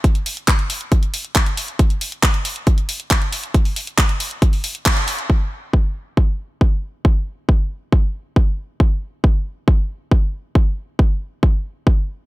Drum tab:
CC |----------------|----------------|----------------|x---------------|
HH |xxoxxxoxxxoxxxox|xxoxxxoxxxoxxxox|xooxxxoxxooxxxox|----------------|
CP |----x-------x---|----x-------x---|----x-------x---|----------------|
BD |o---o---o---o---|o---o---o---o---|o---o---o---o---|o---o---o---o---|

CC |----------------|----------------|----------------|
HH |----------------|----------------|----------------|
CP |----------------|----------------|----------------|
BD |o---o---o---o---|o---o---o---o---|o---o---o---o---|